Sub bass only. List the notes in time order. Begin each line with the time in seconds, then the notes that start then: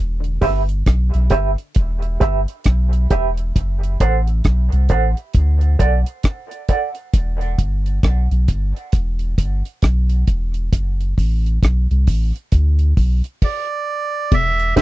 Already playing: E1
0.42 G1
0.87 B1
1.14 B1
1.32 G1
1.77 E1
2.22 G1
2.66 B1
3.11 E1
3.56 F#1
4.01 A1
4.46 B1
4.73 C2
4.91 A1
5.35 D2
5.80 B1
7.14 E1
7.59 G1
8.04 B1
8.31 B1
8.49 G1
8.94 E1
9.38 G1
9.83 B1
10.28 E1
10.73 F#1
11.18 A1
11.63 B1
11.91 C2
12.08 A1
12.53 D2
12.98 B1
14.32 E1
14.77 G1